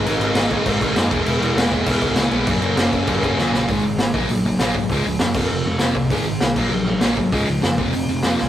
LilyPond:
<<
  \new Staff \with { instrumentName = "Distorted electric guitar" } { \clef bass \time 4/4 \key aes \mixolydian \tempo 4 = 198 <aes, ees aes c' ees'>8 <aes, ees aes c' ees'>8 <aes, ees aes c' ees'>8 <aes, ees aes c' ees'>8 <aes, ees aes c' ees'>8 <aes, ees aes c' ees'>8 <aes, ees aes c' ees'>8 <e gis b e'>8 | <e gis b e'>8 <e gis b e'>8 <e gis b e'>8 <e gis b e'>8 <e gis b e'>8 <e gis b e'>8 <e gis b e'>8 <e gis b e'>8 | <ges, des ges bes des'>8 <ges, des ges bes des'>8 <ges, des ges bes des'>8 <ges, des ges bes des'>8 <ges, des ges bes des'>8 <ges, des ges bes des'>8 <ges, des ges bes des'>8 <ges, des ges bes des'>8 | <aes, ees aes>8 <aes, ees>8 <aes, ees>8 <bes, ges bes>8 <bes, ges>8 <bes, ges>8 <bes, ges bes>8 <bes, ges>8 |
<des f aes>8 <des f>8 <des f>8 <f, c f>8 <f, c>8 <f, c>8 <f, c f>8 <f, c>8 | <aes, ees aes>8 <aes, ees>8 <aes, ees>8 <bes, ges bes>8 <bes, ges>8 <bes, ges>8 <bes, ges bes>8 <bes, ges>8 | <des f aes>8 <des f>8 <des f>8 <f, c f>8 <f, c>8 <f, c>8 <f, c f>8 <f, c>8 | }
  \new Staff \with { instrumentName = "Picked electric bass" } { \clef bass \time 4/4 \key aes \mixolydian aes,,8 aes,,8 aes,,8 aes,8 aes,,8 aes,,8 ges,8 e,,8 | e,,8 e,,8 e,,8 e,,8 e,,8 des,8 des,8 b,,8 | ges,,8 ges,,8 ges,,8 ges,8 ges,,8 ges,,8 ees,8 bes,,8 | aes,,8 aes,,8 aes,,8 bes,,8 bes,,4 bes,,8 aes,,8 |
des,8 des,8 ges,8 f,,8 f,,8 f,,8 f,,8 c,8 | aes,,8 aes,,8 c,8 bes,,8 bes,,4 bes,,8 aes,,8 | des,8 des,8 ges,8 f,,8 f,,8 f,,8 f,,8 c,8 | }
  \new DrumStaff \with { instrumentName = "Drums" } \drummode { \time 4/4 cymc8 cymc8 <cymc sn>8 <cymc bd>8 <cymc bd>8 <cymc bd>8 <cymc sn>8 <cymc bd>8 | cymc8 cymc8 <cymc sn>8 <cymc bd>8 <cymc bd>8 <cymc bd>8 <cymc sn>8 cymc8 | <cymc bd>8 cymc8 <cymc sn>8 <cymc bd>8 <cymc bd>8 <cymc bd>8 sn8 sn8 | <hho bd>4 <hho sn>8 bd8 hho4 <hho sn>8 bd8 |
<hho bd>4 <hho sn>8 <cymc bd>8 r4 <hho sn>8 bd8 | <hho bd>4 <hho sn>8 <cymc bd>8 r4 <hho sn>8 bd8 | <hho bd>4 <hho sn>8 bd8 hho4 <hho sn>8 sn8 | }
>>